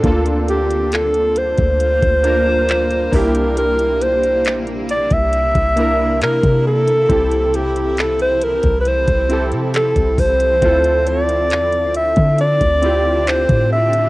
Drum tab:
HH |xxxxxxxxxxx-xxox|xxxxxxxxxxx-xx-x|xxxxxxxxxxxxxxox|xxxxxxxxxxx-xx-x|
CP |----x-------x---|----x-------x---|----x-------x---|----x-------x---|
BD |o------o-o----o-|-------o-o---o--|o------o-o---oo-|o------o-o---o--|